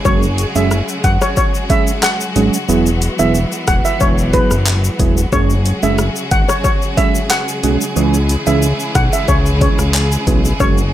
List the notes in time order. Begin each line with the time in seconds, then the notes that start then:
Already playing: C#3 G#3 G#4
0.05 F#1 F#3 G#3 C#4 F#4 G#4 C#5, kick, shaker
0.23 shaker
0.38 closed hi-hat, shaker
0.55 F#1 F#3 G#3 C#4 G#4 E5, shaker
0.71 cross-stick, shaker
0.88 shaker
1.04 F#1 F#5, kick, closed hi-hat, shaker
1.22 C#5, cross-stick, shaker
1.37 C#5, kick, shaker
1.54 shaker
1.70 F#3 G#3 C#4 G#4 E5, kick, closed hi-hat, shaker
1.87 shaker
2.03 F#5, cross-stick, clap, shaker
2.21 shaker
2.36 G#1 F#3 G#3 C#4 G#4, closed hi-hat, shaker
2.54 shaker
2.68 E1 E3 F#3 B3 E4 G#4, shaker
2.86 shaker
3.02 closed hi-hat, shaker
3.19 E1 F#3 B3 E4 G#4 E5, shaker
3.35 shaker
3.52 shaker
3.68 E1 F#5, kick, cross-stick, closed hi-hat, shaker
3.85 E5, shaker
4.00 E1 C#5, kick, shaker
4.18 shaker
4.33 F#3 B3 E4 G#4 B4, kick, closed hi-hat, shaker
4.51 F#1, cross-stick, shaker
4.66 clap, shaker
4.84 shaker
4.99 E1 F#3 B3 E4 G#4, kick, closed hi-hat, shaker
5.17 shaker
5.32 F#1 C#3 F#3 G#3 C#4 F#4 G#4 C#5, kick, shaker
5.50 shaker
5.66 closed hi-hat, shaker
5.83 F#1 F#3 G#3 C#4 G#4 E5, shaker
5.98 cross-stick, shaker
6.16 shaker
6.31 G#1 F#5, kick, closed hi-hat, shaker
6.49 C#5, cross-stick, shaker
6.64 C#5, kick, shaker
6.82 shaker
6.97 F#3 G#3 C#4 G#4 E5, kick, closed hi-hat, shaker
7.15 shaker
7.30 F#5, cross-stick, clap, shaker
7.48 shaker
7.63 B1 F#3 G#3 C#4 G#4, closed hi-hat, shaker
7.81 shaker
7.96 C#2 E3 G#3 C#4 E4 G#4, shaker
8.14 shaker
8.29 closed hi-hat, shaker
8.47 C#2 E3 G#3 C#4 G#4 E5, shaker
8.62 shaker
8.80 shaker
8.95 B1 F#5, kick, cross-stick, closed hi-hat, shaker
9.13 E5, shaker
9.28 C#2 C#5, kick, shaker
9.46 shaker
9.61 E3 G#3 C#4 G#4 C#5, kick, closed hi-hat, shaker
9.79 C#2, cross-stick, shaker
9.94 clap, shaker
10.12 shaker
10.27 B1 E3 G#3 C#4 G#4, kick, closed hi-hat, shaker
10.45 shaker
10.60 F#1 F#3 G#3 C#4 F#4 G#4 C#5, kick, shaker
10.78 shaker